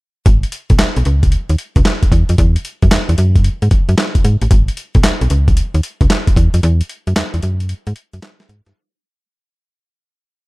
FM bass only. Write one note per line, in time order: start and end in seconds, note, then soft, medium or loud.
0.26 0.45 G#1 loud
0.70 0.77 B1 medium
0.79 0.86 B1 soft
0.97 1.03 B1 medium
1.06 1.37 C#2 medium
1.50 1.56 D#2 medium
1.76 1.83 C#2 loud
2.12 2.24 E2 medium
2.29 2.36 F2 medium
2.39 2.57 E2 loud
2.83 2.89 F#2 medium
2.92 2.98 E2 soft
3.09 3.15 E2 medium
3.18 3.49 F#2 loud
3.62 3.69 G#2 medium
3.89 3.95 F#2 medium
4.25 4.37 G#2 medium
4.42 4.48 A1 medium
4.51 4.70 G#1 loud
4.95 5.01 B1 medium
5.04 5.11 B1 soft
5.21 5.28 B1 medium
5.31 5.62 C#2 loud
5.74 5.81 D#2 medium
6.01 6.07 C#2 medium
6.37 6.49 E2 medium
6.54 6.60 F2 medium
6.63 6.82 E2 loud
7.07 7.14 F#2 medium
7.17 7.23 E2 soft
7.34 7.40 E2 medium
7.43 7.74 F#2 medium
7.87 7.93 G#2 medium
8.14 8.20 F#2 medium
8.49 8.61 G#2 medium
8.67 8.73 G2 medium